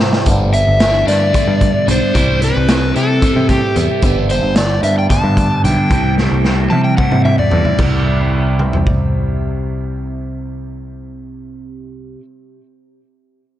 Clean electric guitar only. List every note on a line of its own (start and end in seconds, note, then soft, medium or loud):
0.00 0.24 C3 medium
0.00 0.25 G3 medium
0.00 0.25 C4 medium
0.00 0.26 E4 medium
0.26 0.80 G2 loud
0.26 0.78 D3 medium
0.26 0.55 G3 medium
0.26 0.53 B3 loud
0.26 0.51 D4 loud
0.52 0.79 G3 medium
0.52 0.80 B3 medium
0.52 0.80 D4 medium
0.79 1.31 D3 medium
0.79 1.08 G3 medium
0.79 1.06 B3 medium
0.79 1.04 D4 medium
1.05 1.33 G3 medium
1.05 1.33 B3 medium
1.05 1.34 D4 medium
1.32 2.12 G2 medium
1.32 1.85 D3 medium
1.32 1.87 G3 medium
1.32 1.87 B3 medium
1.32 1.88 D4 medium
1.86 2.12 D3 medium
1.86 2.13 G3 medium
1.86 2.13 B3 medium
1.86 2.13 D4 medium
2.13 2.66 C3 medium
2.13 2.42 G3 medium
2.13 2.40 C4 medium
2.13 2.38 E4 loud
2.39 2.68 G3 medium
2.39 2.68 C4 medium
2.39 2.69 E4 medium
2.68 3.20 C3 medium
2.68 2.96 G3 medium
2.68 2.94 C4 medium
2.68 2.93 E4 medium
2.94 3.23 G3 medium
2.94 3.23 C4 medium
2.94 3.23 E4 medium
3.22 3.73 C3 medium
3.22 3.75 G3 medium
3.22 3.76 C4 medium
3.22 3.76 E4 medium
3.74 4.00 C3 medium
3.74 4.03 G3 medium
3.74 4.01 C4 medium
3.74 4.02 E4 medium
4.02 4.56 G2 medium
4.02 4.54 D3 medium
4.02 4.32 G3 medium
4.02 4.30 B3 loud
4.02 4.28 D4 medium
4.30 4.56 G3 medium
4.30 4.56 B3 medium
4.30 4.58 D4 medium
4.55 5.09 D3 medium
4.55 4.87 G3 medium
4.55 4.84 B3 medium
4.55 4.83 D4 medium
4.84 5.12 G3 medium
4.84 5.11 B3 medium
4.84 5.12 D4 medium
5.10 5.89 G2 medium
5.10 5.63 D3 medium
5.10 5.64 G3 medium
5.10 5.65 B3 medium
5.10 5.66 D4 medium
5.64 5.89 D3 medium
5.64 5.91 G3 medium
5.64 5.90 B3 medium
5.64 5.91 D4 medium
5.91 6.44 C3 medium
5.91 6.20 G3 medium
5.91 6.18 C4 loud
5.91 6.17 E4 medium
6.18 6.45 G3 medium
6.18 6.47 C4 medium
6.18 6.47 E4 medium
6.45 6.97 C3 medium
6.45 6.73 G3 medium
6.45 6.72 C4 medium
6.45 6.70 E4 medium
6.71 6.99 G3 medium
6.71 6.99 C4 medium
6.71 7.00 E4 medium
6.98 7.50 C3 medium
6.98 7.52 G3 medium
6.98 7.52 C4 medium
6.98 7.53 E4 medium
7.51 7.77 C3 medium
7.51 7.78 G3 medium
7.51 7.78 C4 medium
7.51 7.78 E4 medium
7.79 12.19 C3 medium
7.79 12.20 G3 medium
7.79 12.21 C4 medium
7.83 12.23 E4 medium